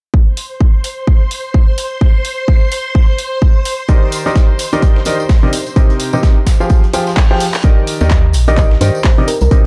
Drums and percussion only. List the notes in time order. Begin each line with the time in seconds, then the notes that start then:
0.14 kick
0.37 open hi-hat
0.61 kick
0.84 open hi-hat
1.07 kick
1.31 open hi-hat
1.54 kick
1.78 open hi-hat
2.01 kick
2.25 open hi-hat
2.48 kick
2.72 open hi-hat
2.95 kick
3.18 open hi-hat
3.42 kick
3.65 open hi-hat
3.88 kick, closed hi-hat, tambourine
4.12 closed hi-hat, open hi-hat, tambourine
4.26 snare, tambourine
4.36 kick, snare, closed hi-hat, tambourine
4.59 closed hi-hat, open hi-hat, tambourine
4.73 closed hi-hat, tambourine
4.82 kick, closed hi-hat, tambourine
4.96 snare
5.05 closed hi-hat, open hi-hat, tambourine
5.20 tambourine
5.29 kick, snare, open hi-hat, tambourine
5.53 closed hi-hat, open hi-hat, tambourine
5.66 closed hi-hat, tambourine
5.76 kick, closed hi-hat
5.90 closed hi-hat
6.00 closed hi-hat, open hi-hat, tambourine
6.13 tambourine
6.23 kick, snare, closed hi-hat, tambourine
6.47 kick, snare, closed hi-hat, open hi-hat, tambourine
6.61 tambourine
6.69 kick, closed hi-hat, tambourine
6.84 closed hi-hat
6.93 closed hi-hat, open hi-hat, tambourine
7.07 snare, tambourine
7.17 kick, snare, clap, closed hi-hat, tambourine
7.40 closed hi-hat, open hi-hat, tambourine
7.54 clap, closed hi-hat, tambourine
7.63 kick, closed hi-hat, tambourine
7.87 closed hi-hat, open hi-hat, tambourine
8.01 snare, tambourine
8.10 kick, snare, clap, closed hi-hat, tambourine
8.33 closed hi-hat, open hi-hat, tambourine
8.48 closed hi-hat, tambourine
8.57 kick, clap, closed hi-hat, tambourine
8.71 snare
8.81 closed hi-hat, open hi-hat, tambourine
8.95 tambourine
9.04 kick, snare, clap, open hi-hat
9.28 closed hi-hat, open hi-hat, tambourine
9.41 closed hi-hat, tambourine
9.51 kick, closed hi-hat, tambourine